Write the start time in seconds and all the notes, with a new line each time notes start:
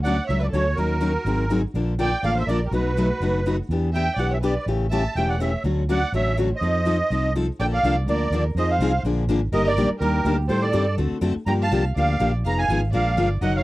Already playing: D2
0.03 D3 F#3 A3 C#4 F#4 D5 F#5
0.26 C#2 D3 F#3 C#5 E5
0.30 A3 C#4 F#4
0.39 B4 D5
0.49 D2 A4
0.53 D3 F#3 A3 C#4 F#4 C#5
0.73 F#4 A#4
0.77 D#2 D#3 F#3 C#4 D#4 A#4
1.01 D#3 F#3 C#4 D#4 A#4
1.25 G#1 D#3 F#3 C4 D#4 G#4
1.50 D#3 F#3 C4 D#4 G#4
1.74 A#1 D3 F3 A#3 D4 A4
1.99 D3 F3 A#3 D4 A4 D5 G5
2.23 A1 D3 F3 A#3 D4 A4 D5 F5
2.36 C5 E5
2.47 A#1 D3 F3 A#3 D4 A4 A#4 D5
2.66 G4 A#4
2.71 B1 B2 F#3 A3 D#4 F#4 B4
2.97 B2 F#3 A3 D#4 F#4
3.20 F#1 B2 F#3 A3 D#4 F#4
3.46 B2 F#3 A3 D#4 F#4
3.69 E2 E3 B3 D4 G4
3.93 E3 B3 D4 G4 E5 G5
4.16 B1 E3 B3 D4 G4 D5 F#5
4.30 C#5 E5
4.41 E3 B3 D4 G4 B4 D5
4.66 A1 C#3 E3 A3 C#4 G4
4.90 C#3 E3 A3 C#4 G4 E5 A5
5.15 E1 C#3 E3 A3 C#4 G4 E5 G5
5.29 D5 F#5
5.40 C#3 E3 A3 C#4 G4 C#5 E5
5.64 D2 D3 F#3 A3 C#4 F#4
5.89 D3 F#3 A3 C#4 F#4 D5 F#5
6.12 A1 D3 F#3 A3 C#4 F#4 C#5 E5
6.38 D3 F#3 A3 C#4 F#4
6.53 C5 D#5
6.61 F2 F3 C4 D#4 A4
6.85 F3 C4 D#4 A4
7.10 C2 F3 C4 D#4 A4
7.35 F3 C4 D#4 A4
7.60 A#1 D3 F3 A#3 D4 A4 D5 G5
7.72 D5 F5
7.83 C2 D3 F3 A#3 D4 A4
8.07 D2 D3 F3 A#3 D4 A4 A#4 D5
8.30 D#2 D3 F3 A#3 D4
8.34 A4
8.55 F2 F3 C4 D#4 G#4 C5 D#5
8.68 C5 F5
8.79 C2 F3 C4 D#4 G#4
9.03 A#1 D3 F3 A#3 D4 G#4
9.27 G#1 D3 F3 A#3 D4 G#4
9.52 G1 D#3 G3 A#3 D4 G4 A#4 D#5
9.64 A#4 D5
9.77 A#1 D#3 G3 A#3 D4 G4
9.99 D#2 D#3 G3 A#3 D4 G4 A#4
10.25 D2 D#3 G3 A#3 D4 G4
10.48 A2 D#3 G3 C4 G4 A4 C5
10.61 A4 D5
10.72 G2 D#3 G3 C4 G4 A4
10.98 D2 D3 A3 C4 F#4 A4
11.21 F#2 D3 A3 C4 F#4 A4
11.36 muted fretless electric bass stroke
11.46 G2 D3 F3 A#3 D4 G4 G5 A#5
11.62 F5 A5
11.71 C2 D3 F3 A#3 D4 G4
11.96 D2 D3 F3 A#3 D4 G4 D5 F5
12.20 A#1 D3 F3 A#3 D4 G4
12.44 F1 F3 B3 D#4 G#4 F5 A#5
12.58 F5 G#5
12.68 G#1 F3 B3 D#4 G#4
12.93 A#1 F3 G#3 D4 F4 A#4 D5 F5
13.17 G1 F3 G#3 D4 F4 A#4
13.41 F#1 D#3 F#3 C#4 D#4 A#4 D#5 F#5
13.56 C#5 F5